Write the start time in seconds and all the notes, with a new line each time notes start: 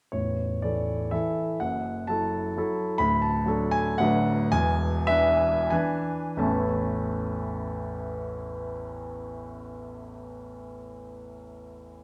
0.12 A0 A1 C#5
0.62 E3 E4 A4 D5
1.11 E3 E4 A4 E5
1.60 F#1 F#2 F#5
2.07 F#3 E4 A4 A5
2.57 F#3 E4 A4
2.98 D1 D2 B5
3.22 A5
3.46 F#3 D4 A4
3.71 G#5
3.98 D1 D2 F#3 D4 B4 F#5
4.52 E1 E2 G#5
5.07 E3 D4 B4 E5
5.70 E3 D4 B4 G#5
6.37 A1 E2 E3 A3 C#4 E4 A5